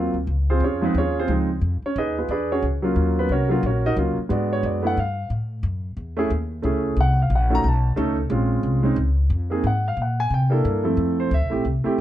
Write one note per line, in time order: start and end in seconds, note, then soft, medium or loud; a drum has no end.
0.00 0.11 D#2 medium
0.00 0.13 F#3 medium
0.00 0.14 A#3 soft
0.00 0.14 C4 medium
0.00 0.14 F4 medium
0.14 0.26 D2 medium
0.27 0.59 C#2 medium
0.50 0.62 C4 medium
0.50 0.62 F4 medium
0.50 0.62 G#4 medium
0.50 0.62 C5 medium
0.60 0.93 F2 medium
0.64 0.83 C#4 medium
0.64 0.83 F4 medium
0.64 0.83 G#4 medium
0.64 0.83 C#5 medium
0.81 0.93 F3 medium
0.81 0.94 G#3 medium
0.81 0.96 B3 medium
0.81 0.94 C4 medium
0.81 0.94 D#4 medium
0.81 0.96 B4 medium
0.94 1.27 D#2 medium
0.94 1.17 C#5 medium
0.99 1.17 C#4 medium
0.99 1.17 F4 medium
0.99 1.17 G#4 medium
1.19 1.28 C4 medium
1.19 1.30 F4 medium
1.19 1.30 G#4 medium
1.19 1.30 C5 medium
1.28 1.61 C#2 medium
1.28 1.47 F3 medium
1.28 1.47 G#3 medium
1.28 1.48 C4 medium
1.28 1.48 D#4 medium
1.61 1.81 F2 medium
1.82 1.97 C#4 medium
1.82 1.97 C#5 medium
1.82 muted upright bass stroke soft
1.96 2.28 D#2 medium
1.96 2.17 D#4 medium
1.96 2.17 G#4 medium
1.96 2.17 B4 medium
1.96 2.17 D#5 medium
2.18 2.30 B3 soft
2.18 2.30 F4 soft
2.18 2.30 G#4 soft
2.18 2.30 B4 medium
2.28 2.61 E2 medium
2.28 2.50 D4 medium
2.28 2.51 G#4 medium
2.28 2.50 B4 medium
2.28 2.50 D5 medium
2.52 2.63 C#4 medium
2.52 2.63 F#4 medium
2.52 2.63 G#4 medium
2.52 2.63 C#5 medium
2.62 2.95 C#2 medium
2.82 3.26 F#3 medium
2.82 3.27 A#3 medium
2.82 3.27 C#4 medium
2.82 3.27 F4 medium
2.96 3.28 D#2 medium
3.19 3.31 B3 medium
3.19 3.30 B4 medium
3.29 3.62 C2 medium
3.29 3.49 C#4 medium
3.29 3.51 F#4 medium
3.29 3.50 A#4 medium
3.29 3.51 C#5 medium
3.47 3.61 F#3 medium
3.47 3.62 A#3 medium
3.47 3.62 C#4 medium
3.47 3.62 F4 medium
3.47 3.49 A4 soft
3.52 3.64 F#4 medium
3.52 3.63 A#4 medium
3.63 3.95 A#1 medium
3.63 3.85 C#4 medium
3.63 3.85 C#5 medium
3.67 3.85 F#4 medium
3.67 3.85 A#4 medium
3.86 3.93 D#4 medium
3.86 3.93 F#4 medium
3.86 3.93 A#4 medium
3.86 3.93 D#5 medium
3.96 4.16 C#2 medium
3.96 4.15 F#3 medium
3.96 4.15 A#3 medium
3.96 4.16 C#4 medium
3.96 4.16 F4 medium
4.18 muted upright bass stroke soft
4.29 4.62 G#2 medium
4.29 4.79 G#3 medium
4.29 4.79 B3 medium
4.29 4.80 D4 medium
4.29 4.80 F#4 medium
4.29 4.51 D5 medium
4.53 4.64 C#5 medium
4.63 4.96 F#2 medium
4.63 4.85 D5 medium
4.82 4.95 A3 medium
4.82 4.95 B3 medium
4.82 4.95 D4 medium
4.82 4.95 E4 medium
4.87 4.98 F#5 medium
4.97 5.29 G2 medium
4.97 5.29 F5 medium
5.30 5.62 A2 medium
5.63 5.96 F#2 medium
5.97 6.29 E2 medium
6.17 6.29 A3 medium
6.17 6.29 C#4 medium
6.17 6.29 E4 medium
6.17 6.30 G#4 medium
6.30 6.63 D#2 medium
6.62 6.96 C#2 medium
6.62 6.96 A3 medium
6.62 6.97 C#4 medium
6.62 6.97 E4 medium
6.62 6.98 G#4 medium
6.97 7.29 C2 medium
7.01 7.19 F#5 medium
7.22 7.32 F5 medium
7.30 7.63 A#1 medium
7.35 7.53 F#5 medium
7.50 7.62 A3 medium
7.50 7.62 C#4 medium
7.50 7.63 D#4 medium
7.50 7.63 F#4 medium
7.55 7.65 A#5 loud
7.64 7.96 B1 medium
7.68 7.97 A5 medium
7.96 8.29 C#2 medium
7.96 8.15 A3 medium
7.96 8.16 C#4 medium
7.96 8.16 D#4 medium
7.96 8.16 A4 medium
8.30 8.63 A#1 medium
8.30 8.80 G#3 medium
8.30 8.81 C4 medium
8.30 8.81 C#4 medium
8.30 8.81 F4 medium
8.63 8.96 C2 medium
8.83 8.95 G#3 medium
8.83 8.96 C4 medium
8.83 8.96 C#4 medium
8.83 8.96 D#4 medium
8.96 9.29 C#2 medium
9.30 9.63 F2 medium
9.50 9.62 A#3 medium
9.50 9.63 C4 medium
9.50 9.63 D#4 medium
9.50 9.63 G#4 medium
9.64 9.96 G#2 medium
9.64 9.86 F#5 medium
9.88 9.99 F5 medium
9.97 10.29 A#2 medium
10.02 10.20 F#5 medium
10.20 10.31 G#5 loud
10.30 10.63 C3 medium
10.30 10.64 G5 medium
10.50 10.82 A#3 medium
10.50 10.82 D4 medium
10.50 10.83 E4 medium
10.50 10.83 A4 medium
10.65 10.96 G2 medium
10.83 11.28 F2 medium
10.83 11.28 A3 medium
10.83 11.28 C4 medium
10.83 11.28 E4 medium
10.83 11.28 A4 medium
10.97 11.30 F2 medium
11.20 11.31 C5 medium
11.31 11.43 D2 medium
11.31 11.64 E5 medium
11.42 11.52 C2 medium
11.50 11.63 A1 medium
11.50 11.62 A3 medium
11.50 11.63 C4 medium
11.50 11.63 E4 medium
11.50 11.63 G4 medium
11.65 11.84 C2 medium
11.84 12.01 A3 medium
11.84 12.01 C4 medium
11.84 12.01 E4 medium
11.84 12.01 G4 medium
11.84 muted upright bass stroke soft